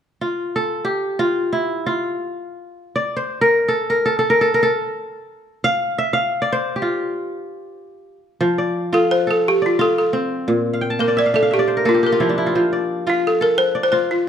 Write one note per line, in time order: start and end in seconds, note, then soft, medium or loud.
0.21 1.19 F4 medium
0.56 1.87 A4 medium
0.85 2.26 G4 medium
1.19 1.59 F4 medium
1.53 1.92 E4 medium
1.86 3.38 F4 medium
2.96 4.06 D5 medium
3.17 4.35 C5 medium
3.41 3.74 A#4 medium
3.68 3.96 A4 medium
3.90 4.12 A#4 medium
4.06 4.18 A4 medium
4.19 4.36 A4 medium
4.30 4.47 A#4 medium
4.41 4.60 A4 medium
4.54 4.69 A#4 medium
4.63 5.94 A4 medium
5.64 6.04 F5 medium
5.98 6.19 E5 medium
6.13 7.13 F5 medium
6.42 7.53 D5 medium
6.52 7.71 C5 medium
6.76 8.17 G4 soft
6.82 8.33 F4 medium
8.41 10.53 F3 medium
8.58 9.61 D5 medium
8.93 9.79 F4 medium
8.93 9.10 A4 medium
9.11 9.28 C5 medium
9.27 10.54 A4 medium
9.27 9.47 A4 medium
9.48 9.63 G4 loud
9.62 10.73 D5 medium
9.66 9.82 F4 medium
9.79 11.23 F4 medium
9.79 9.96 A4 medium
9.98 10.34 A4 medium
10.13 11.93 C4 medium
10.48 12.60 A#2 medium
10.73 11.23 F5 medium
10.81 11.74 G5 medium
10.90 11.83 A5 medium
10.99 11.85 A#3 medium
10.99 11.16 A#4 medium
10.99 11.67 C5 medium
11.08 11.59 D5 medium
11.17 11.36 D5 medium
11.17 11.33 E5 medium
11.26 11.42 F5 medium
11.34 12.29 D4 medium
11.34 11.53 A4 medium
11.34 11.50 E5 medium
11.42 12.26 F5 medium
11.51 11.88 G4 medium
11.51 12.18 E5 medium
11.59 12.70 D5 medium
11.68 12.86 C5 medium
11.77 13.04 A#4 medium
11.85 13.47 A#3 medium
11.85 12.05 F4 medium
11.85 13.17 A4 medium
11.94 12.02 G4 medium
12.03 13.44 G4 medium
12.03 12.41 A#4 medium
12.12 12.44 F4 medium
12.20 12.54 F3 medium
12.20 12.37 E4 medium
12.29 13.97 D4 medium
12.38 12.61 E4 medium
12.46 13.07 F4 medium
12.55 14.29 F3 medium
12.73 13.74 D5 medium
13.07 13.92 F4 medium
13.07 13.26 F4 medium
13.27 13.43 A4 medium
13.41 14.29 A4 medium
13.41 13.50 A#4 medium
13.58 13.82 C5 loud
13.75 14.29 D5 medium
13.83 13.91 C5 medium
13.92 14.29 F4 medium
13.92 14.10 C5 medium
14.11 14.29 F4 medium